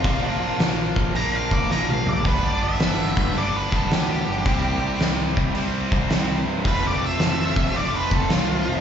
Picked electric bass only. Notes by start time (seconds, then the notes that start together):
0.05 A#1
0.41 A#1
0.60 A#1
0.96 A#1
1.15 A#1
1.70 A#1
2.08 A#1
2.25 G1
2.63 G1
2.81 G1
3.17 G2
3.35 G1
3.72 G1
3.90 D2
4.28 G1
4.46 C2
4.82 C2
5.01 C2
5.37 C2
5.56 C2
6.11 C2
6.47 G2
6.65 F1
7.01 F1
7.20 F1
7.56 F2
7.75 F1
8.12 F1
8.31 C2
8.67 F1